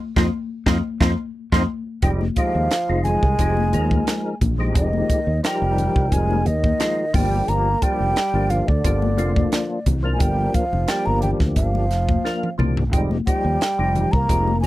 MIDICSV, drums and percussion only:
0, 0, Header, 1, 2, 480
1, 0, Start_track
1, 0, Tempo, 681044
1, 1430, Time_signature, 4, 2, 24, 8
1, 10338, End_track
2, 0, Start_track
2, 0, Title_t, "Drums"
2, 115, Note_on_c, 9, 36, 85
2, 118, Note_on_c, 9, 63, 99
2, 120, Note_on_c, 9, 38, 88
2, 186, Note_off_c, 9, 36, 0
2, 189, Note_off_c, 9, 63, 0
2, 190, Note_off_c, 9, 38, 0
2, 468, Note_on_c, 9, 36, 84
2, 470, Note_on_c, 9, 38, 85
2, 475, Note_on_c, 9, 63, 96
2, 539, Note_off_c, 9, 36, 0
2, 540, Note_off_c, 9, 38, 0
2, 546, Note_off_c, 9, 63, 0
2, 709, Note_on_c, 9, 36, 87
2, 713, Note_on_c, 9, 38, 89
2, 715, Note_on_c, 9, 63, 84
2, 779, Note_off_c, 9, 36, 0
2, 783, Note_off_c, 9, 38, 0
2, 785, Note_off_c, 9, 63, 0
2, 1074, Note_on_c, 9, 36, 91
2, 1077, Note_on_c, 9, 38, 80
2, 1083, Note_on_c, 9, 63, 82
2, 1144, Note_off_c, 9, 36, 0
2, 1147, Note_off_c, 9, 38, 0
2, 1154, Note_off_c, 9, 63, 0
2, 1425, Note_on_c, 9, 42, 73
2, 1428, Note_on_c, 9, 36, 93
2, 1496, Note_off_c, 9, 42, 0
2, 1498, Note_off_c, 9, 36, 0
2, 1557, Note_on_c, 9, 63, 58
2, 1628, Note_off_c, 9, 63, 0
2, 1664, Note_on_c, 9, 42, 53
2, 1667, Note_on_c, 9, 36, 74
2, 1735, Note_off_c, 9, 42, 0
2, 1738, Note_off_c, 9, 36, 0
2, 1908, Note_on_c, 9, 42, 71
2, 1913, Note_on_c, 9, 38, 89
2, 1979, Note_off_c, 9, 42, 0
2, 1984, Note_off_c, 9, 38, 0
2, 2149, Note_on_c, 9, 42, 52
2, 2150, Note_on_c, 9, 64, 64
2, 2220, Note_off_c, 9, 42, 0
2, 2221, Note_off_c, 9, 64, 0
2, 2275, Note_on_c, 9, 36, 77
2, 2345, Note_off_c, 9, 36, 0
2, 2387, Note_on_c, 9, 42, 76
2, 2389, Note_on_c, 9, 36, 72
2, 2458, Note_off_c, 9, 42, 0
2, 2459, Note_off_c, 9, 36, 0
2, 2516, Note_on_c, 9, 63, 62
2, 2586, Note_off_c, 9, 63, 0
2, 2630, Note_on_c, 9, 42, 58
2, 2700, Note_off_c, 9, 42, 0
2, 2756, Note_on_c, 9, 36, 75
2, 2758, Note_on_c, 9, 63, 66
2, 2827, Note_off_c, 9, 36, 0
2, 2829, Note_off_c, 9, 63, 0
2, 2869, Note_on_c, 9, 42, 75
2, 2874, Note_on_c, 9, 38, 96
2, 2940, Note_off_c, 9, 42, 0
2, 2945, Note_off_c, 9, 38, 0
2, 3111, Note_on_c, 9, 36, 67
2, 3111, Note_on_c, 9, 42, 52
2, 3113, Note_on_c, 9, 63, 60
2, 3113, Note_on_c, 9, 64, 60
2, 3181, Note_off_c, 9, 36, 0
2, 3182, Note_off_c, 9, 42, 0
2, 3183, Note_off_c, 9, 63, 0
2, 3183, Note_off_c, 9, 64, 0
2, 3351, Note_on_c, 9, 36, 94
2, 3351, Note_on_c, 9, 42, 74
2, 3421, Note_off_c, 9, 42, 0
2, 3422, Note_off_c, 9, 36, 0
2, 3477, Note_on_c, 9, 63, 55
2, 3547, Note_off_c, 9, 63, 0
2, 3592, Note_on_c, 9, 36, 74
2, 3593, Note_on_c, 9, 42, 50
2, 3662, Note_off_c, 9, 36, 0
2, 3664, Note_off_c, 9, 42, 0
2, 3834, Note_on_c, 9, 42, 67
2, 3839, Note_on_c, 9, 38, 93
2, 3904, Note_off_c, 9, 42, 0
2, 3909, Note_off_c, 9, 38, 0
2, 4075, Note_on_c, 9, 64, 62
2, 4076, Note_on_c, 9, 42, 49
2, 4145, Note_off_c, 9, 64, 0
2, 4147, Note_off_c, 9, 42, 0
2, 4199, Note_on_c, 9, 36, 78
2, 4270, Note_off_c, 9, 36, 0
2, 4313, Note_on_c, 9, 36, 74
2, 4314, Note_on_c, 9, 42, 72
2, 4383, Note_off_c, 9, 36, 0
2, 4384, Note_off_c, 9, 42, 0
2, 4444, Note_on_c, 9, 63, 64
2, 4515, Note_off_c, 9, 63, 0
2, 4553, Note_on_c, 9, 42, 55
2, 4624, Note_off_c, 9, 42, 0
2, 4678, Note_on_c, 9, 36, 77
2, 4685, Note_on_c, 9, 63, 62
2, 4749, Note_off_c, 9, 36, 0
2, 4756, Note_off_c, 9, 63, 0
2, 4792, Note_on_c, 9, 42, 71
2, 4797, Note_on_c, 9, 38, 97
2, 4862, Note_off_c, 9, 42, 0
2, 4867, Note_off_c, 9, 38, 0
2, 5032, Note_on_c, 9, 46, 64
2, 5033, Note_on_c, 9, 36, 85
2, 5037, Note_on_c, 9, 63, 59
2, 5037, Note_on_c, 9, 64, 64
2, 5103, Note_off_c, 9, 46, 0
2, 5104, Note_off_c, 9, 36, 0
2, 5107, Note_off_c, 9, 63, 0
2, 5107, Note_off_c, 9, 64, 0
2, 5274, Note_on_c, 9, 42, 67
2, 5344, Note_off_c, 9, 42, 0
2, 5511, Note_on_c, 9, 42, 52
2, 5513, Note_on_c, 9, 36, 71
2, 5582, Note_off_c, 9, 42, 0
2, 5583, Note_off_c, 9, 36, 0
2, 5753, Note_on_c, 9, 42, 68
2, 5758, Note_on_c, 9, 38, 94
2, 5823, Note_off_c, 9, 42, 0
2, 5828, Note_off_c, 9, 38, 0
2, 5991, Note_on_c, 9, 42, 55
2, 5994, Note_on_c, 9, 64, 59
2, 6062, Note_off_c, 9, 42, 0
2, 6065, Note_off_c, 9, 64, 0
2, 6120, Note_on_c, 9, 36, 71
2, 6190, Note_off_c, 9, 36, 0
2, 6234, Note_on_c, 9, 36, 75
2, 6235, Note_on_c, 9, 42, 79
2, 6304, Note_off_c, 9, 36, 0
2, 6305, Note_off_c, 9, 42, 0
2, 6359, Note_on_c, 9, 63, 66
2, 6430, Note_off_c, 9, 63, 0
2, 6473, Note_on_c, 9, 42, 60
2, 6543, Note_off_c, 9, 42, 0
2, 6599, Note_on_c, 9, 36, 78
2, 6603, Note_on_c, 9, 63, 67
2, 6670, Note_off_c, 9, 36, 0
2, 6674, Note_off_c, 9, 63, 0
2, 6710, Note_on_c, 9, 42, 75
2, 6715, Note_on_c, 9, 38, 94
2, 6780, Note_off_c, 9, 42, 0
2, 6785, Note_off_c, 9, 38, 0
2, 6951, Note_on_c, 9, 42, 57
2, 6952, Note_on_c, 9, 36, 65
2, 6959, Note_on_c, 9, 63, 60
2, 6959, Note_on_c, 9, 64, 67
2, 7021, Note_off_c, 9, 42, 0
2, 7022, Note_off_c, 9, 36, 0
2, 7029, Note_off_c, 9, 63, 0
2, 7029, Note_off_c, 9, 64, 0
2, 7189, Note_on_c, 9, 42, 75
2, 7192, Note_on_c, 9, 36, 93
2, 7260, Note_off_c, 9, 42, 0
2, 7262, Note_off_c, 9, 36, 0
2, 7431, Note_on_c, 9, 42, 52
2, 7432, Note_on_c, 9, 36, 72
2, 7437, Note_on_c, 9, 63, 65
2, 7501, Note_off_c, 9, 42, 0
2, 7502, Note_off_c, 9, 36, 0
2, 7507, Note_off_c, 9, 63, 0
2, 7561, Note_on_c, 9, 64, 53
2, 7631, Note_off_c, 9, 64, 0
2, 7667, Note_on_c, 9, 42, 66
2, 7672, Note_on_c, 9, 38, 96
2, 7737, Note_off_c, 9, 42, 0
2, 7742, Note_off_c, 9, 38, 0
2, 7907, Note_on_c, 9, 42, 55
2, 7914, Note_on_c, 9, 64, 67
2, 7977, Note_off_c, 9, 42, 0
2, 7985, Note_off_c, 9, 64, 0
2, 8036, Note_on_c, 9, 36, 72
2, 8036, Note_on_c, 9, 38, 30
2, 8106, Note_off_c, 9, 36, 0
2, 8107, Note_off_c, 9, 38, 0
2, 8148, Note_on_c, 9, 42, 73
2, 8150, Note_on_c, 9, 36, 72
2, 8218, Note_off_c, 9, 42, 0
2, 8220, Note_off_c, 9, 36, 0
2, 8281, Note_on_c, 9, 63, 65
2, 8351, Note_off_c, 9, 63, 0
2, 8392, Note_on_c, 9, 42, 52
2, 8397, Note_on_c, 9, 38, 32
2, 8463, Note_off_c, 9, 42, 0
2, 8468, Note_off_c, 9, 38, 0
2, 8518, Note_on_c, 9, 36, 75
2, 8519, Note_on_c, 9, 63, 63
2, 8588, Note_off_c, 9, 36, 0
2, 8590, Note_off_c, 9, 63, 0
2, 8637, Note_on_c, 9, 38, 50
2, 8708, Note_off_c, 9, 38, 0
2, 8763, Note_on_c, 9, 48, 52
2, 8834, Note_off_c, 9, 48, 0
2, 8873, Note_on_c, 9, 63, 63
2, 8873, Note_on_c, 9, 64, 64
2, 8877, Note_on_c, 9, 45, 65
2, 8943, Note_off_c, 9, 63, 0
2, 8943, Note_off_c, 9, 64, 0
2, 8948, Note_off_c, 9, 45, 0
2, 9002, Note_on_c, 9, 43, 72
2, 9072, Note_off_c, 9, 43, 0
2, 9113, Note_on_c, 9, 36, 94
2, 9115, Note_on_c, 9, 42, 68
2, 9184, Note_off_c, 9, 36, 0
2, 9186, Note_off_c, 9, 42, 0
2, 9240, Note_on_c, 9, 63, 60
2, 9310, Note_off_c, 9, 63, 0
2, 9354, Note_on_c, 9, 36, 73
2, 9358, Note_on_c, 9, 42, 55
2, 9424, Note_off_c, 9, 36, 0
2, 9428, Note_off_c, 9, 42, 0
2, 9594, Note_on_c, 9, 42, 69
2, 9599, Note_on_c, 9, 38, 89
2, 9664, Note_off_c, 9, 42, 0
2, 9669, Note_off_c, 9, 38, 0
2, 9834, Note_on_c, 9, 64, 70
2, 9837, Note_on_c, 9, 42, 51
2, 9905, Note_off_c, 9, 64, 0
2, 9907, Note_off_c, 9, 42, 0
2, 9960, Note_on_c, 9, 36, 73
2, 10031, Note_off_c, 9, 36, 0
2, 10074, Note_on_c, 9, 36, 73
2, 10077, Note_on_c, 9, 42, 73
2, 10144, Note_off_c, 9, 36, 0
2, 10147, Note_off_c, 9, 42, 0
2, 10201, Note_on_c, 9, 63, 64
2, 10271, Note_off_c, 9, 63, 0
2, 10316, Note_on_c, 9, 42, 57
2, 10338, Note_off_c, 9, 42, 0
2, 10338, End_track
0, 0, End_of_file